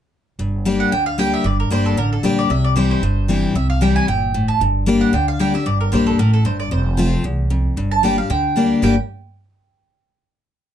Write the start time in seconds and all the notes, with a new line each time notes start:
0.39 G1 G2
0.65 G3 A#3 D4 G4
0.80 F#5
0.92 D2 D3 G5
1.06 F5
1.18 G3 A#3 D4 G4 G5
1.34 E5
1.44 G1 G2 D5
1.60 A#4
1.70 G1 G3 A#3 D4 G4 C5
1.86 A4
1.97 A1 D3 A#4
2.13 A4
2.23 A#1 G3 A#3 D4 G4 C5
2.39 D5
2.50 C2 C3 E5
2.64 D5
2.76 E3 G3 C4 E4 C5
2.91 C5
3.02 G1 G2
3.28 E3 G3 C4 E4
3.55 C2 C3 E5
3.70 F5
3.81 E3 G3 C4 E4 G5
3.96 G#5
4.08 G1 A#2 G5
4.34 A2
4.48 A5
4.60 G1 G2
4.86 G3 A#3 D4 G4
5.01 F#5
5.13 D2 D3 G5
5.28 F5
5.39 G3 A#3 D4 G4 G5
5.54 D4 G4 E5
5.66 G1 G2 D5
5.81 A#4
5.92 A#1 G3 A#3 D4 G4 C5
6.07 A4
6.19 A1 A2 A#4
6.33 A4
6.45 G1 G2 C5
6.60 D5
6.71 F1 F2 C5
6.97 F3 A3 C4 F4
7.24 C2 E2
7.50 F2
7.77 G1 G2
7.91 A5
8.03 G3 A#3 D4 G4 G5
8.17 D4 G4 F5
8.30 D2 D3 G5
8.56 G3 A#3 D4 G4
8.82 G1 G2 D3 G3 A#3 D4 G4 G5